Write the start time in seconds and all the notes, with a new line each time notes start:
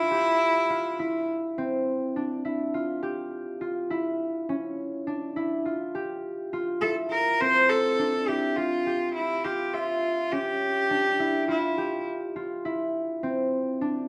Already playing: D4 E4 F4
0.11 G4
0.70 F4
0.99 E4
1.58 C4
2.16 D4
2.45 E4
2.74 F4
3.03 G4
3.61 F4
3.90 E4
4.49 C#4
5.07 D4
5.36 E4
5.65 F4
5.95 G4
6.53 F4
6.81 E4 A4
7.11 A#4
7.41 C4 C5
7.69 A4
7.99 D4
8.28 E4 G4
8.56 F4
8.86 G4
9.15 E4
9.44 F4 G4
9.74 F4 E5
10.32 C#4 G4
10.90 D4
11.19 E4
11.48 E4 F4
11.78 G4
12.36 F4
12.65 E4
13.23 C4
13.81 D4